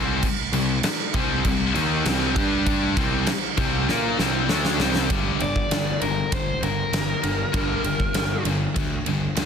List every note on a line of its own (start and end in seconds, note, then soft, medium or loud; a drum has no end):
0.00 0.21 C2 loud
0.00 0.22 C3 medium
0.00 0.22 G3 loud
0.00 0.23 C4 loud
0.23 kick loud
0.23 crash medium
0.52 0.81 C2 medium
0.52 0.78 C3 medium
0.52 0.78 G3 medium
0.52 crash medium
0.83 muted picked electric bass stroke soft
0.83 muted overdriven electric guitar stroke medium
0.83 muted distorted electric guitar stroke medium
0.83 snare loud
0.83 crash medium
1.14 1.43 C2 loud
1.14 1.44 C3 medium
1.14 1.45 G3 loud
1.14 1.45 C4 loud
1.14 kick loud
1.14 crash medium
1.45 1.73 C2 medium
1.45 1.69 C3 medium
1.45 1.70 G3 medium
1.45 kick medium
1.45 crash medium
1.75 2.03 D#2 medium
1.75 2.05 D#3 medium
1.75 2.05 A#3 medium
1.75 2.05 D#4 loud
1.75 crash medium
2.05 2.34 C2 medium
2.05 2.35 C3 medium
2.05 2.34 G3 medium
2.05 2.36 C4 medium
2.05 snare loud
2.05 crash medium
2.36 2.93 G2 medium
2.36 2.96 G3 medium
2.36 2.96 D4 loud
2.36 2.96 G4 loud
2.36 kick loud
2.36 crash medium
2.66 kick loud
2.66 crash medium
2.97 3.25 C2 medium
2.97 3.26 C3 medium
2.97 3.27 G3 loud
2.97 3.27 C4 loud
2.97 kick loud
2.97 crash medium
3.27 snare loud
3.27 crash medium
3.57 3.86 C2 loud
3.57 3.87 C3 medium
3.57 3.88 G3 loud
3.57 3.88 C4 loud
3.57 kick loud
3.57 crash medium
3.89 4.17 A#2 medium
3.89 4.18 A#3 medium
3.89 4.18 F4 medium
3.89 4.19 A#4 medium
3.89 snare medium
4.19 4.47 C2 medium
4.19 4.49 C3 medium
4.19 4.49 G3 medium
4.19 4.49 C4 medium
4.19 snare medium
4.49 4.78 D2 medium
4.49 4.79 D3 medium
4.49 4.79 A3 medium
4.49 4.79 D4 medium
4.49 snare medium
4.65 snare medium
4.80 5.08 C2 medium
4.80 5.09 C3 medium
4.80 5.10 G3 medium
4.80 5.10 C4 loud
4.80 snare loud
4.95 snare medium
5.10 5.30 G1 medium
5.10 5.39 G2 medium
5.10 5.39 D3 medium
5.10 5.40 G3 medium
5.10 kick loud
5.10 ride medium
5.40 5.60 G1 medium
5.40 5.68 G2 medium
5.40 5.68 D3 medium
5.40 6.00 D5 medium
5.40 ride medium
5.56 kick medium
5.71 5.91 G1 medium
5.71 5.99 G2 medium
5.71 5.99 D3 medium
5.71 snare loud
5.71 ride medium
6.01 6.22 G1 medium
6.01 6.29 G2 medium
6.01 6.30 D3 medium
6.01 6.31 A#4 medium
6.01 ride medium
6.32 6.52 G1 medium
6.32 6.60 G2 medium
6.32 6.60 D3 medium
6.32 6.62 C5 medium
6.32 kick loud
6.32 ride medium
6.62 6.82 G1 medium
6.62 6.90 G2 medium
6.62 6.91 D3 medium
6.62 8.42 A#4 medium
6.62 ride medium
6.92 7.13 G1 medium
6.92 7.21 G2 medium
6.92 7.21 D3 medium
6.92 snare medium
6.92 ride medium
7.23 7.44 G1 medium
7.23 7.51 G2 medium
7.23 7.51 D3 medium
7.23 ride medium
7.53 7.74 G1 medium
7.53 7.82 G2 medium
7.53 7.83 D3 medium
7.53 7.83 G3 loud
7.53 kick loud
7.53 ride medium
7.84 8.04 G1 medium
7.84 8.12 G2 medium
7.84 8.12 D3 medium
7.84 ride medium
8.00 kick medium
8.14 8.35 G1 medium
8.14 8.43 G2 medium
8.14 8.43 D3 medium
8.14 snare loud
8.14 ride medium
8.45 8.66 G1 medium
8.45 8.73 G2 medium
8.45 8.73 D3 medium
8.45 ride medium
8.76 8.96 D2 medium
8.76 9.03 G2 medium
8.76 9.04 D3 medium
8.76 kick loud
8.76 ride loud
9.06 9.27 G1 medium
9.06 9.34 G2 medium
9.06 9.35 D3 medium
9.06 ride medium
9.36 9.45 D2 medium
9.36 9.45 G2 medium
9.36 9.45 D3 medium
9.36 snare loud
9.36 ride medium